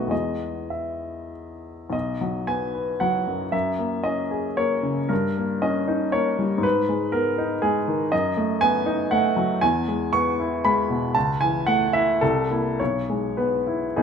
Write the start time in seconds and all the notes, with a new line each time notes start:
Already playing: B1 A3 B3 F#4 D#5
0.07 E2 G#3 B3 G#4 D#5
0.70 E5
1.90 B1 D#5
2.21 F#3
2.47 B3 G#5
2.75 B4
3.00 F#3 F#5
3.27 F#2
3.52 F#2 E5
3.79 A#3
4.03 C#4 D#5
4.31 G#4
4.57 A#3 C#5
4.83 C#3
5.09 G2 A#4
5.38 A#3
5.62 C#4 D#5
5.88 D#4
6.12 A#3 C#5
6.39 G3
6.58 G#2
6.63 B4
6.89 G#3
7.12 B3 A#4
7.38 D#4
7.62 G#3 G#4
7.88 D#3
8.12 F#2 D#5
8.37 A3
8.61 B3 G#5
8.86 D#4
9.11 A3 F#5
9.37 F#3
9.61 E2 G#5
9.88 G#3
10.13 B3 C#6
10.40 E4
10.65 G#3 B5
10.90 B2
11.15 C#2 A5
11.41 E3 G#5
11.67 A3 F#5
11.93 E4 E5
12.21 C2 A4
12.51 A#3 E4
12.80 B1 C#5
13.10 G#3
13.37 B3 B4
13.67 E4
13.96 B1 B3 D#4 G#4